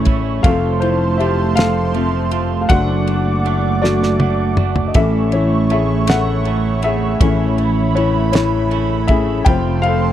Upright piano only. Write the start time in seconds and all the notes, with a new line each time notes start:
Already playing: E3 A3 C#4 E4 C#5 D5
0.43 F3 A3 C4 A4 F5
0.80 E4 C5
1.18 G4 E5
1.55 A4 F5
1.95 F3 A3 C4
2.61 F5
2.69 F#3 A3 D4 A4 F#5
3.82 F#3 A3 D4 F#4 D5
4.88 D#5
4.95 E3 A3 C#4 A4 E5
5.33 E4 C#5
5.71 G#4 E5
6.09 A4 F#5
6.84 G#4 E5
7.21 E3 A3 C#4
7.95 E4 C#5
8.32 E4 C#5
9.07 E3 A3 C#4 G#4 E5
9.45 F3 A3 C4 C5 G5
9.82 A4 F5